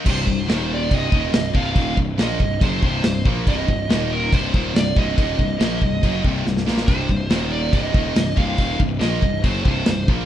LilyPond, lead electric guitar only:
\new Staff \with { instrumentName = "Lead electric guitar" } { \time 4/4 \key c \minor \tempo 4 = 140 c''4. d''8 ees''4. f''8~ | f''8 r8 ees''4 c''8 c''4 r8 | ees''4. bes'8 c''4 d''8 ees''8~ | ees''2~ ees''8 r4. |
c''4. d''8 ees''4. f''8~ | f''8 r8 ees''4 c''8 c''4 r8 | }